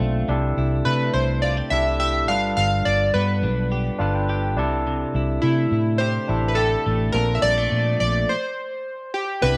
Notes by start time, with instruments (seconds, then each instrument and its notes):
Already playing: clean electric guitar A#2 D4 F4, tine electric piano C4 D4 F4 A4 E5 A5
0.00 fingered electric bass B1, clean electric guitar A3
0.28 fingered electric bass C2, clean electric guitar C3, tine electric piano D4 E4 G4 A4
0.57 fingered electric bass C2, clean electric guitar E4
0.85 fingered electric bass C3, clean electric guitar A3, synth keys B4
1.14 fingered electric bass C2, clean electric guitar E4, synth keys C5
1.42 clean electric guitar F4, synth keys D5
1.57 clean electric guitar G4
1.70 fingered electric bass C2, tine electric piano D4 E4 G4 A4, clean electric guitar E4, synth keys E5
2.00 clean electric guitar G4, synth keys E5
2.28 fingered electric bass G1, clean electric guitar G2, tine electric piano D4 F4 A4 B4, synth keys F5
2.57 fingered electric bass G1, clean electric guitar G2, synth keys F5
2.85 fingered electric bass G1, clean electric guitar D4, synth keys D5
3.14 fingered electric bass G2, clean electric guitar B3, synth keys B4
3.43 fingered electric bass B1, clean electric guitar D4
3.72 clean electric guitar G4
3.98 fingered electric bass G1, tine electric piano D4 F4 A4 B4 F5, clean electric guitar D4
4.15 tine electric piano G5
4.29 clean electric guitar G4, tine electric piano G5
4.57 fingered electric bass C2, clean electric guitar C3, tine electric piano D4 E4 G4 A4 A5
4.87 clean electric guitar C3
5.15 fingered electric bass C2, clean electric guitar E4
5.42 fingered electric bass C3, clean electric guitar A3, synth keys E4
5.71 fingered electric bass A2, clean electric guitar E4
5.98 clean electric guitar G4, synth keys C5
6.28 fingered electric bass A1, tine electric piano D4 E4 G4 A4, clean electric guitar E4
6.48 synth keys B4
6.55 clean electric guitar G4, synth keys A4
6.86 fingered electric bass A1, clean electric guitar A3
7.13 fingered electric bass A#1, clean electric guitar A#2, tine electric piano C4 D4 F4 A4, synth keys A#4
7.35 synth keys E5
7.42 fingered electric bass A#1, clean electric guitar G3, synth keys D5
7.58 clean electric guitar A3
7.71 fingered electric bass A#2, clean electric guitar F3
8.00 fingered electric bass A#1, clean electric guitar A3, synth keys D5
8.29 synth keys C5
9.14 synth keys G4
9.41 fingered electric bass C2, clean electric guitar C3 E4, analog synth pad C3 B3 E4, tine electric piano B3 D4 E4 G4, synth keys B4